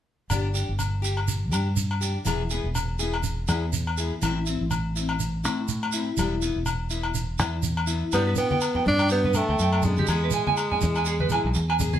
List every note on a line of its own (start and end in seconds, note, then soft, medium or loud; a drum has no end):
0.30 0.62 G1 medium
0.30 0.46 B3 medium
0.30 0.46 D4 medium
0.30 0.47 G4 medium
0.30 low agogo medium
0.30 shekere medium
0.54 0.71 D4 soft
0.54 0.70 G4 soft
0.54 shekere medium
0.69 1.52 G1 medium
0.79 low agogo soft
0.79 shekere medium
1.02 1.18 G4 soft
1.02 shekere medium
1.17 low agogo soft
1.28 shekere medium
1.51 2.15 G2 medium
1.51 1.69 D4 soft
1.51 1.68 G4 soft
1.51 low agogo medium
1.51 shekere medium
1.76 shekere medium
1.91 low agogo soft
2.01 2.18 D4 soft
2.01 2.17 G4 soft
2.01 shekere medium
2.25 2.58 E1 medium
2.25 2.41 E3 medium
2.25 2.41 B3 medium
2.25 2.41 E4 medium
2.25 2.42 G#4 medium
2.25 low agogo medium
2.25 shekere medium
2.50 2.67 B3 soft
2.50 2.67 E4 soft
2.50 2.66 G#4 soft
2.50 shekere medium
2.64 3.48 E1 medium
2.75 low agogo medium
2.75 shekere medium
2.99 3.16 B3 soft
2.99 3.15 E4 soft
2.99 3.15 G#4 soft
2.99 shekere medium
3.14 low agogo medium
3.23 shekere medium
3.48 4.11 E2 medium
3.48 3.65 B3 soft
3.48 3.65 E4 soft
3.48 3.64 G#4 soft
3.48 low agogo medium
3.48 shekere medium
3.73 shekere medium
3.87 low agogo medium
3.97 4.15 B3 soft
3.97 4.14 E4 soft
3.97 4.13 G#4 soft
3.97 shekere medium
4.21 4.54 A1 medium
4.21 4.37 E3 medium
4.21 4.38 C4 medium
4.21 4.38 E4 medium
4.21 low agogo medium
4.21 shekere medium
4.46 4.63 C4 soft
4.46 4.62 E4 soft
4.46 shekere medium
4.61 5.45 A1 medium
4.71 low agogo soft
4.71 shekere medium
4.96 5.13 C4 soft
4.96 5.11 E4 medium
4.96 shekere medium
5.09 low agogo medium
5.20 shekere medium
5.44 6.08 A2 medium
5.44 5.61 C4 soft
5.44 5.60 E4 soft
5.44 low agogo medium
5.44 shekere medium
5.68 shekere medium
5.83 low agogo medium
5.92 6.09 E4 soft
5.92 shekere medium
5.96 6.10 C4 soft
6.17 6.50 E1 medium
6.17 6.33 G3 medium
6.17 6.34 B3 medium
6.17 6.34 E4 medium
6.17 low agogo medium
6.17 shekere medium
6.42 6.59 B3 soft
6.42 6.58 E4 soft
6.42 shekere medium
6.56 7.39 E1 medium
6.66 low agogo medium
6.66 shekere medium
6.90 7.08 B3 soft
6.90 7.06 E4 soft
6.90 shekere medium
7.03 low agogo medium
7.15 shekere medium
7.39 8.03 E2 medium
7.39 7.56 B3 soft
7.39 7.55 E4 medium
7.39 low agogo medium
7.39 shekere medium
7.63 shekere medium
7.77 low agogo medium
7.87 8.05 B3 soft
7.87 8.03 E4 soft
7.87 shekere medium
8.12 8.34 G2 medium
8.12 8.29 G3 medium
8.12 8.37 B3 medium
8.12 8.29 B3 medium
8.12 8.30 D4 medium
8.12 8.22 G4 medium
8.12 low agogo medium
8.12 shekere medium
8.27 8.34 B4 medium
8.36 8.83 B3 medium
8.36 8.53 D4 soft
8.36 8.46 G5 medium
8.36 shekere medium
8.41 8.55 B3 soft
8.51 8.58 G5 medium
8.51 high conga medium
8.61 low agogo medium
8.61 shekere medium
8.75 8.83 G5 medium
8.75 low conga medium
8.86 9.40 G2 medium
8.86 9.04 B3 soft
8.86 9.02 D4 soft
8.86 9.10 D4 loud
8.86 low conga medium
8.99 9.07 G5 medium
8.99 low agogo medium
8.99 shekere soft
9.09 9.38 B3 medium
9.09 9.19 G4 medium
9.09 shekere medium
9.24 9.32 B4 medium
9.24 high conga medium
9.34 9.86 A3 medium
9.34 9.51 D4 soft
9.34 9.44 G5 medium
9.34 low agogo medium
9.34 shekere medium
9.38 9.52 B3 soft
9.49 9.58 D2 medium
9.49 9.56 G5 medium
9.59 10.02 F#2 medium
9.59 9.70 G5 medium
9.59 shekere medium
9.73 9.81 G5 medium
9.73 low agogo medium
9.82 11.80 G#3 medium
9.82 10.00 D4 soft
9.82 low conga medium
9.82 shekere medium
9.87 10.01 B3 soft
9.97 10.06 G4 medium
9.97 high conga medium
9.97 shekere soft
10.07 10.30 E2 medium
10.07 10.25 B3 medium
10.07 10.25 E4 medium
10.07 10.18 G#4 medium
10.07 low agogo medium
10.07 shekere medium
10.12 10.26 G#4 medium
10.24 10.30 B4 medium
10.31 10.49 G#4 soft
10.31 10.42 G#5 medium
10.31 shekere medium
10.37 10.51 E4 soft
10.47 10.54 G#5 medium
10.47 high conga medium
10.57 low agogo medium
10.57 shekere medium
10.72 10.78 G#5 medium
10.72 low conga medium
10.81 11.36 E2 medium
10.81 10.99 E4 soft
10.81 10.98 G#4 soft
10.81 low conga medium
10.81 shekere medium
10.95 11.04 G#5 medium
10.95 low agogo medium
10.95 shekere soft
11.05 11.15 G#4 medium
11.05 shekere medium
11.20 11.27 B4 medium
11.20 high conga medium
11.29 11.47 G#4 medium
11.29 11.40 G#5 medium
11.29 low agogo medium
11.29 shekere medium
11.34 11.48 E4 soft
11.44 11.54 B1 medium
11.44 muted clean electric guitar stroke medium
11.54 11.98 E2 medium
11.54 muted clean electric guitar stroke medium
11.54 shekere medium
11.70 11.77 G#5 medium
11.70 low agogo medium
11.79 11.96 G#4 medium
11.79 muted steel-string acoustic guitar stroke soft
11.79 low conga medium
11.79 shekere medium
11.93 11.99 G#4 medium
11.93 high conga medium
11.93 shekere soft